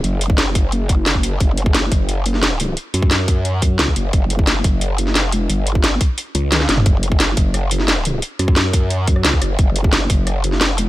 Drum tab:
HH |x-x-x-x-x-x-x-x-|x-x-x-x-x-x-x-x-|x-x-x-x-x-x-x-x-|x-x-x-x-x-x-x-x-|
SD |----o-------o---|----o------oo---|----o-------o---|----o------oo---|
T1 |----------------|----------------|----------------|----------------|
T2 |----------------|----------------|----------------|----------------|
BD |---o--o---o--o--|o--o--o---------|---o--o---o--o--|o--o--o---------|

HH |x-x-x-x-x-x-x-x-|x-x-x-x-x-x-x-x-|x-x-x-x-x-x-x-x-|x-x-x-x-x-x-x-x-|
SD |----o-------ooo-|----o---r--oo---|--r-o------rorr-|----o---r--oo---|
T1 |------------o---|----------------|----------------|----------------|
T2 |---------------o|----------------|----------------|----------------|
BD |---o--o---------|o--o--o---------|---o--o---o--o--|o--o--o---------|